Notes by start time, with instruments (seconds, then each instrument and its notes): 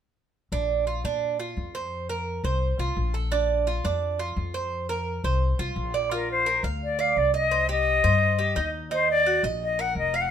0.52 upright bass A#1, cuban tres D4
0.87 cuban tres F4
1.04 upright bass A#2, cuban tres D4
1.40 cuban tres F4
1.57 upright bass F2
1.75 cuban tres C5
2.09 cuban tres A#4
2.44 upright bass C2, cuban tres C5
2.79 upright bass C2, cuban tres F4
2.97 upright bass A#1
3.14 cuban tres A4
3.32 cuban tres D4
3.67 cuban tres F4
3.84 upright bass F2, cuban tres D4
4.19 cuban tres F4
4.36 upright bass F2
4.54 cuban tres C5
4.89 cuban tres A#4
5.24 upright bass C2, cuban tres C5
5.59 upright bass C2, cuban tres F4
5.76 upright bass A#1
5.94 cuban tres D5
6.11 cuban tres F4, flute A#4
6.31 flute C5
6.46 cuban tres A#4
6.63 upright bass D2, cuban tres F5
6.84 flute D5
6.99 cuban tres D5, flute F5
7.16 upright bass C2, flute D5
7.34 cuban tres D#5, flute D#5
7.51 cuban tres C5
7.69 cuban tres G4, flute D#5
8.04 upright bass G2, cuban tres C5
8.39 cuban tres G4
8.56 upright bass D#2, cuban tres D#4
8.91 cuban tres D#4, flute C5
9.11 flute D5
9.26 cuban tres F#4
9.43 upright bass A#1, cuban tres D#5
9.63 flute D#5
9.79 cuban tres A#4, flute F#5
9.95 upright bass F1, flute D#5
10.14 cuban tres F5, flute F5
10.21 flute F#5